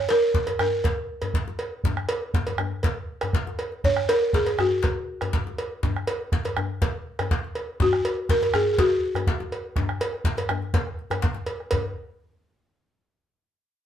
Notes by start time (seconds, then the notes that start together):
Already playing: C#5
0.09 A#4, cowbell
0.34 bombo rim, bombo low, djembe slap
0.47 cowbell, djembe tone
0.59 A#4, bombo rim, djembe slap, djembe bass
0.84 bombo rim, bombo low, cowbell, djembe slap
1.22 cowbell, djembe bass
1.34 bombo low, djembe slap
1.48 djembe slap, djembe tone
1.59 cowbell
1.84 bombo low, djembe slap, djembe bass
1.97 bombo rim
2.09 cowbell, djembe slap
2.34 bombo low, djembe slap
2.47 cowbell, djembe slap, djembe tone
2.58 bombo rim, djembe bass
2.71 bombo rim
2.83 bombo low, cowbell, djembe slap
3.21 bombo rim, cowbell, djembe slap, djembe bass
3.33 bombo rim, bombo low, djembe slap
3.47 djembe tone
3.59 bombo rim, cowbell, djembe slap
3.72 djembe slap
3.84 C#5, bombo low, djembe slap, djembe bass
3.96 bombo rim
4.09 A#4, cowbell
4.33 G#4, bombo rim, bombo low, djembe slap
4.46 cowbell, djembe tone
4.59 F#4, bombo rim, djembe slap, djembe bass
4.83 bombo rim, bombo low, cowbell, djembe slap
5.21 bombo rim, cowbell, djembe bass
5.33 bombo low, djembe slap
5.47 djembe slap, djembe tone
5.58 cowbell
5.83 bombo low, djembe slap, djembe bass
5.96 bombo rim
6.07 cowbell
6.32 bombo rim, bombo low, djembe slap
6.45 cowbell, djembe tone
6.57 bombo rim, djembe slap, djembe bass
6.82 bombo rim, bombo low, cowbell, djembe slap
7.19 bombo rim, cowbell, djembe bass
7.31 bombo low, djembe slap
7.44 djembe slap
7.55 cowbell
7.80 F#4, bombo low, djembe slap, djembe bass
7.93 bombo rim
8.05 cowbell
8.29 A#4, bombo rim, bombo low, djembe slap
8.42 cowbell, djembe tone
8.54 G#4, bombo rim, djembe slap, djembe bass
8.73 G#4
8.78 F#4, bombo rim, bombo low, cowbell, djembe slap
9.15 bombo rim, cowbell, djembe bass
9.27 bombo low, djembe slap
9.40 djembe slap, djembe tone
9.52 cowbell
9.76 bombo rim, bombo low, djembe slap, djembe bass
9.89 bombo rim
10.00 bombo rim, cowbell, djembe slap
10.13 bombo rim
10.24 bombo low, djembe slap
10.37 cowbell, djembe tone
10.49 bombo rim, djembe bass
10.62 djembe slap
10.74 bombo low, cowbell, djembe slap
10.87 bombo rim
10.99 djembe slap
11.10 bombo rim, cowbell, djembe bass
11.22 bombo low, djembe slap
11.34 bombo rim, djembe tone
11.46 cowbell
11.60 bombo rim
11.71 bombo low, cowbell, djembe bass